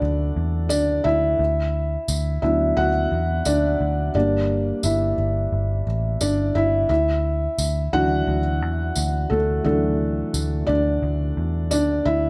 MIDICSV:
0, 0, Header, 1, 4, 480
1, 0, Start_track
1, 0, Key_signature, 2, "major"
1, 0, Tempo, 688073
1, 975, Time_signature, 4, 2, 24, 8
1, 8578, End_track
2, 0, Start_track
2, 0, Title_t, "Felt piano"
2, 0, Program_c, 0, 0
2, 0, Control_c, 0, 64, 127
2, 0, Note_on_c, 0, 54, 57
2, 0, Note_on_c, 0, 57, 74
2, 0, Note_on_c, 0, 62, 77
2, 0, Note_on_c, 0, 64, 63
2, 0, Note_on_c, 0, 69, 99
2, 0, Note_on_c, 0, 74, 104
2, 470, Note_off_c, 0, 62, 0
2, 473, Note_off_c, 0, 74, 0
2, 484, Note_on_c, 0, 74, 109
2, 499, Note_on_c, 0, 62, 79
2, 720, Note_off_c, 0, 62, 0
2, 726, Note_on_c, 0, 76, 104
2, 736, Note_off_c, 0, 74, 0
2, 740, Note_off_c, 0, 64, 0
2, 740, Note_on_c, 0, 64, 81
2, 982, Control_c, 0, 64, 0
2, 983, Note_off_c, 0, 54, 0
2, 984, Note_off_c, 0, 69, 0
2, 986, Note_off_c, 0, 57, 0
2, 1102, Control_c, 0, 64, 127
2, 1669, Note_off_c, 0, 64, 0
2, 1678, Note_off_c, 0, 76, 0
2, 1689, Note_on_c, 0, 76, 90
2, 1691, Note_on_c, 0, 54, 60
2, 1696, Note_on_c, 0, 59, 53
2, 1702, Note_on_c, 0, 62, 63
2, 1702, Note_on_c, 0, 64, 69
2, 1922, Note_off_c, 0, 64, 0
2, 1930, Note_on_c, 0, 78, 96
2, 1939, Note_off_c, 0, 76, 0
2, 1942, Note_on_c, 0, 66, 79
2, 2012, Note_off_c, 0, 54, 0
2, 2014, Note_off_c, 0, 59, 0
2, 2017, Note_off_c, 0, 62, 0
2, 2384, Note_off_c, 0, 78, 0
2, 2390, Note_off_c, 0, 66, 0
2, 2413, Note_on_c, 0, 74, 98
2, 2425, Note_on_c, 0, 62, 74
2, 2865, Note_off_c, 0, 74, 0
2, 2871, Note_off_c, 0, 62, 0
2, 2894, Note_on_c, 0, 74, 93
2, 2896, Note_on_c, 0, 55, 57
2, 2899, Note_on_c, 0, 58, 51
2, 2903, Control_c, 0, 64, 0
2, 2905, Note_on_c, 0, 62, 73
2, 3033, Control_c, 0, 64, 127
2, 3351, Note_off_c, 0, 62, 0
2, 3374, Note_on_c, 0, 76, 81
2, 3386, Note_on_c, 0, 64, 67
2, 3388, Note_off_c, 0, 74, 0
2, 3587, Note_off_c, 0, 55, 0
2, 3588, Note_off_c, 0, 58, 0
2, 4066, Note_off_c, 0, 76, 0
2, 4072, Note_off_c, 0, 64, 0
2, 4333, Note_on_c, 0, 74, 103
2, 4341, Note_on_c, 0, 62, 76
2, 4556, Note_off_c, 0, 74, 0
2, 4560, Note_off_c, 0, 62, 0
2, 4570, Note_on_c, 0, 76, 103
2, 4581, Note_on_c, 0, 64, 80
2, 4797, Note_off_c, 0, 76, 0
2, 4801, Note_off_c, 0, 64, 0
2, 4807, Note_on_c, 0, 76, 95
2, 4822, Note_on_c, 0, 64, 70
2, 4824, Control_c, 0, 64, 0
2, 4927, Control_c, 0, 64, 127
2, 5262, Note_off_c, 0, 76, 0
2, 5270, Note_off_c, 0, 64, 0
2, 5532, Note_on_c, 0, 52, 58
2, 5533, Note_on_c, 0, 78, 107
2, 5537, Note_on_c, 0, 54, 50
2, 5541, Note_on_c, 0, 62, 63
2, 5542, Note_on_c, 0, 66, 85
2, 5852, Note_off_c, 0, 52, 0
2, 5854, Note_off_c, 0, 54, 0
2, 5856, Note_off_c, 0, 62, 0
2, 6470, Note_off_c, 0, 66, 0
2, 6485, Note_on_c, 0, 69, 94
2, 6496, Note_on_c, 0, 57, 69
2, 6522, Note_off_c, 0, 78, 0
2, 6712, Note_off_c, 0, 69, 0
2, 6718, Note_off_c, 0, 57, 0
2, 6728, Note_on_c, 0, 52, 56
2, 6728, Note_on_c, 0, 69, 95
2, 6733, Note_on_c, 0, 54, 54
2, 6735, Note_on_c, 0, 62, 63
2, 6739, Note_on_c, 0, 57, 73
2, 7428, Note_off_c, 0, 57, 0
2, 7441, Note_on_c, 0, 74, 101
2, 7443, Note_off_c, 0, 62, 0
2, 7454, Note_on_c, 0, 62, 81
2, 7472, Note_off_c, 0, 69, 0
2, 8146, Note_off_c, 0, 62, 0
2, 8157, Note_off_c, 0, 74, 0
2, 8168, Note_on_c, 0, 74, 99
2, 8182, Note_on_c, 0, 62, 81
2, 8394, Note_off_c, 0, 74, 0
2, 8401, Note_off_c, 0, 62, 0
2, 8409, Note_on_c, 0, 76, 103
2, 8423, Note_on_c, 0, 64, 73
2, 8578, Note_off_c, 0, 52, 0
2, 8578, Note_off_c, 0, 54, 0
2, 8578, Note_off_c, 0, 64, 0
2, 8578, Note_off_c, 0, 76, 0
2, 8578, End_track
3, 0, Start_track
3, 0, Title_t, "Picked electric bass"
3, 0, Program_c, 1, 34
3, 13, Note_on_c, 1, 38, 111
3, 210, Note_off_c, 1, 38, 0
3, 254, Note_on_c, 1, 40, 94
3, 493, Note_off_c, 1, 40, 0
3, 493, Note_on_c, 1, 38, 101
3, 690, Note_off_c, 1, 38, 0
3, 734, Note_on_c, 1, 38, 106
3, 931, Note_off_c, 1, 38, 0
3, 972, Note_on_c, 1, 38, 107
3, 1366, Note_off_c, 1, 38, 0
3, 1455, Note_on_c, 1, 38, 100
3, 1651, Note_off_c, 1, 38, 0
3, 1696, Note_on_c, 1, 38, 95
3, 1892, Note_off_c, 1, 38, 0
3, 1934, Note_on_c, 1, 38, 113
3, 2131, Note_off_c, 1, 38, 0
3, 2176, Note_on_c, 1, 40, 94
3, 2372, Note_off_c, 1, 40, 0
3, 2415, Note_on_c, 1, 38, 95
3, 2611, Note_off_c, 1, 38, 0
3, 2656, Note_on_c, 1, 38, 106
3, 2852, Note_off_c, 1, 38, 0
3, 2895, Note_on_c, 1, 31, 104
3, 3288, Note_off_c, 1, 31, 0
3, 3375, Note_on_c, 1, 31, 90
3, 3571, Note_off_c, 1, 31, 0
3, 3614, Note_on_c, 1, 31, 90
3, 3810, Note_off_c, 1, 31, 0
3, 3853, Note_on_c, 1, 31, 107
3, 4050, Note_off_c, 1, 31, 0
3, 4095, Note_on_c, 1, 33, 96
3, 4291, Note_off_c, 1, 33, 0
3, 4334, Note_on_c, 1, 31, 102
3, 4531, Note_off_c, 1, 31, 0
3, 4574, Note_on_c, 1, 31, 105
3, 4770, Note_off_c, 1, 31, 0
3, 4812, Note_on_c, 1, 38, 119
3, 5206, Note_off_c, 1, 38, 0
3, 5291, Note_on_c, 1, 38, 93
3, 5489, Note_off_c, 1, 38, 0
3, 5534, Note_on_c, 1, 38, 96
3, 5730, Note_off_c, 1, 38, 0
3, 5773, Note_on_c, 1, 38, 104
3, 6014, Note_off_c, 1, 38, 0
3, 6014, Note_on_c, 1, 40, 92
3, 6211, Note_off_c, 1, 40, 0
3, 6255, Note_on_c, 1, 38, 99
3, 6451, Note_off_c, 1, 38, 0
3, 6495, Note_on_c, 1, 38, 104
3, 6691, Note_off_c, 1, 38, 0
3, 6735, Note_on_c, 1, 38, 113
3, 7128, Note_off_c, 1, 38, 0
3, 7214, Note_on_c, 1, 38, 96
3, 7411, Note_off_c, 1, 38, 0
3, 7454, Note_on_c, 1, 38, 110
3, 7651, Note_off_c, 1, 38, 0
3, 7691, Note_on_c, 1, 38, 110
3, 7889, Note_off_c, 1, 38, 0
3, 7933, Note_on_c, 1, 40, 88
3, 8171, Note_off_c, 1, 40, 0
3, 8171, Note_on_c, 1, 38, 100
3, 8369, Note_off_c, 1, 38, 0
3, 8413, Note_on_c, 1, 38, 107
3, 8578, Note_off_c, 1, 38, 0
3, 8578, End_track
4, 0, Start_track
4, 0, Title_t, "Drums"
4, 490, Note_on_c, 9, 54, 89
4, 559, Note_off_c, 9, 54, 0
4, 1453, Note_on_c, 9, 54, 88
4, 1523, Note_off_c, 9, 54, 0
4, 2409, Note_on_c, 9, 54, 88
4, 2478, Note_off_c, 9, 54, 0
4, 3371, Note_on_c, 9, 54, 83
4, 3441, Note_off_c, 9, 54, 0
4, 4330, Note_on_c, 9, 54, 91
4, 4399, Note_off_c, 9, 54, 0
4, 5291, Note_on_c, 9, 54, 87
4, 5361, Note_off_c, 9, 54, 0
4, 6247, Note_on_c, 9, 54, 90
4, 6317, Note_off_c, 9, 54, 0
4, 7214, Note_on_c, 9, 54, 91
4, 7283, Note_off_c, 9, 54, 0
4, 8169, Note_on_c, 9, 54, 84
4, 8239, Note_off_c, 9, 54, 0
4, 8578, End_track
0, 0, End_of_file